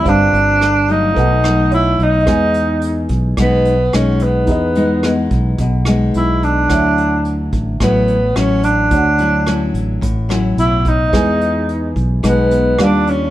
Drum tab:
HH |xxxxxxxx|xxxxxxxx|xxxxxxxx|xxxxxxxx|
SD |--r--r--|r---r-r-|--r--r--|r---r-r-|
BD |o---o---|o--oo---|o--oo---|o--oo---|

HH |xxxxxxxx|xxxxxxxx|
SD |--r--r--|r---r-r-|
BD |o---o--o|o--oo---|